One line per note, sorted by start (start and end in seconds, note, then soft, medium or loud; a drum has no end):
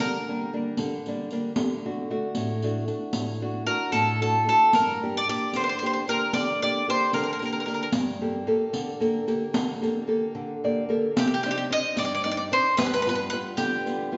0.00 0.51 D3 medium
0.00 0.17 G3 soft
0.00 0.17 A#3 soft
0.00 0.17 D4 soft
0.00 0.56 A#4 medium
0.28 0.52 G3 soft
0.28 0.53 A#3 soft
0.28 0.53 D4 soft
0.53 0.96 G3 soft
0.53 0.96 A#3 soft
0.53 0.96 D4 medium
0.77 1.30 D3 medium
0.77 riq soft
1.06 1.31 G3 soft
1.06 1.31 A#3 soft
1.06 1.32 D4 soft
1.06 riq soft
1.31 1.52 G3 soft
1.31 1.52 A#3 soft
1.31 1.52 D4 soft
1.31 riq soft
1.56 2.09 D3 medium
1.56 riq medium
1.85 2.09 A3 soft
1.85 2.09 D4 soft
1.85 2.10 F#4 soft
2.10 2.53 A3 soft
2.10 2.53 D4 soft
2.10 2.54 F#4 soft
2.35 2.88 A2 medium
2.35 riq soft
2.62 2.86 A3 soft
2.62 2.86 D4 soft
2.62 2.87 F#4 soft
2.62 riq soft
2.88 3.31 A3 soft
2.88 3.31 D4 soft
2.88 3.32 F#4 soft
2.88 riq soft
3.13 3.66 A2 soft
3.13 riq soft
3.41 3.65 A3 soft
3.41 3.65 D4 soft
3.41 3.66 F#4 soft
3.66 4.10 A3 soft
3.66 4.11 D4 soft
3.66 4.11 F#4 soft
3.66 3.91 A#4 medium
3.92 4.46 A2 medium
3.92 4.20 A4 medium
3.92 riq soft
4.21 4.46 A3 soft
4.21 4.46 D4 soft
4.21 4.47 F#4 soft
4.21 4.46 A4 medium
4.21 riq soft
4.47 4.69 A3 soft
4.47 4.69 D4 soft
4.47 4.69 F#4 soft
4.47 4.73 A4 medium
4.73 5.27 G2 soft
4.73 5.17 A#4 medium
4.73 riq medium
5.02 5.27 A#3 soft
5.02 5.28 D4 soft
5.02 5.28 G4 soft
5.17 5.28 D5 medium
5.28 5.72 A#3 soft
5.28 5.72 D4 soft
5.28 5.73 G4 soft
5.28 5.56 D5 medium
5.53 6.07 D3 soft
5.53 5.63 C5 medium
5.53 riq soft
5.64 5.68 C5 medium
5.69 5.77 C5 medium
5.79 6.07 A#3 soft
5.79 6.07 D4 soft
5.79 5.85 C5 medium
5.79 riq soft
5.83 6.07 G4 soft
5.83 5.92 C5 medium
5.93 6.00 C5 soft
6.08 6.52 A#3 soft
6.08 6.51 D4 soft
6.08 6.52 G4 soft
6.08 6.33 A#4 medium
6.08 riq soft
6.33 6.86 D3 soft
6.33 6.60 D5 medium
6.33 riq soft
6.62 6.87 A#3 soft
6.62 6.87 D4 soft
6.62 6.88 G4 soft
6.62 6.86 D5 medium
6.88 7.31 A#3 soft
6.88 7.32 D4 soft
6.88 7.32 G4 soft
6.88 7.13 C5 medium
7.13 7.66 D3 medium
7.13 7.21 A#4 medium
7.13 riq soft
7.23 7.30 A#4 soft
7.33 7.38 A#4 medium
7.39 7.65 A#3 soft
7.39 7.66 D4 soft
7.39 7.66 G4 soft
7.39 7.44 A#4 soft
7.39 riq soft
7.45 7.51 A#4 soft
7.53 7.59 A#4 soft
7.60 7.64 A#4 soft
7.66 7.88 A#3 soft
7.66 7.88 D4 soft
7.66 7.88 G4 soft
7.66 7.73 A#4 soft
7.66 riq soft
7.74 7.81 A#4 medium
7.83 7.88 A#4 soft
7.92 8.46 G2 medium
7.92 riq medium
8.21 8.46 A#3 soft
8.21 8.46 G4 soft
8.21 8.47 A4 soft
8.47 8.91 A#3 soft
8.47 8.91 G4 soft
8.47 8.92 A4 medium
8.73 9.26 D3 medium
8.73 riq soft
9.00 9.26 A#3 soft
9.00 9.27 G4 soft
9.00 9.27 A4 soft
9.00 riq soft
9.27 9.71 A#3 soft
9.27 9.72 G4 soft
9.27 9.72 A4 soft
9.27 riq soft
9.53 10.07 D3 soft
9.53 riq medium
9.82 10.06 A#3 soft
9.82 10.07 G4 soft
9.82 10.07 A4 soft
9.82 riq soft
10.07 10.52 A#3 soft
10.07 10.53 G4 soft
10.07 10.53 A4 soft
10.35 10.88 D3 medium
10.64 10.88 A#3 soft
10.64 10.88 G4 soft
10.64 10.89 A4 soft
10.64 10.88 D5 medium
10.89 11.10 A#3 soft
10.89 11.10 G4 soft
10.89 11.11 A4 soft
10.89 11.14 A#4 soft
11.16 11.69 C3 soft
11.16 11.26 G4 medium
11.16 riq medium
11.27 11.33 G4 soft
11.34 11.41 G4 medium
11.43 11.69 C4 soft
11.43 11.69 D4 soft
11.43 11.69 D#4 soft
11.43 11.50 G4 medium
11.43 riq soft
11.51 11.56 G4 medium
11.58 11.64 G4 medium
11.70 12.14 C4 soft
11.70 12.14 D4 soft
11.70 12.15 D#4 medium
11.70 11.96 D#5 loud
11.96 12.50 G2 medium
11.96 12.04 D5 medium
11.96 riq soft
12.05 12.12 D5 medium
12.15 12.21 D5 medium
12.24 12.50 C4 soft
12.24 12.51 D4 soft
12.24 12.51 D#4 medium
12.24 12.30 D5 medium
12.24 riq soft
12.31 12.36 D5 medium
12.37 12.43 D5 medium
12.52 12.72 C4 soft
12.52 12.72 D4 soft
12.52 12.72 D#4 soft
12.52 12.77 C5 medium
12.52 riq soft
12.77 13.30 G2 soft
12.77 12.85 B4 medium
12.77 riq medium
12.86 12.92 B4 medium
12.94 13.01 B4 medium
13.02 13.31 G3 soft
13.02 13.08 B4 medium
13.07 13.32 B3 soft
13.07 13.32 F4 soft
13.07 13.14 B4 medium
13.07 riq soft
13.15 13.23 B4 medium
13.30 13.75 G3 soft
13.30 13.75 B3 soft
13.30 13.76 F4 medium
13.30 13.37 B4 medium
13.57 14.10 D3 medium
13.57 14.13 G4 medium
13.57 riq soft
13.86 14.11 G3 soft
13.86 14.11 B3 soft
13.86 14.12 F4 medium
13.86 riq soft
14.12 14.17 G3 soft
14.12 14.17 B3 soft
14.12 14.17 F4 soft